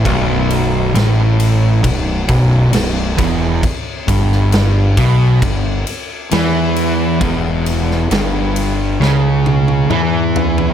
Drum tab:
RD |x-x-x-x-x-x-x-x-|x-x-x-x-x-x-x-x-|x-x-x-x---------|
SD |----o-------o---|---oo-------o---|---oo---o-------|
T1 |----------------|----------------|----------oo----|
T2 |----------------|----------------|------------o---|
FT |----------------|----------------|--------------oo|
BD |o-------o-o---o-|o-o---o-o-------|o---------------|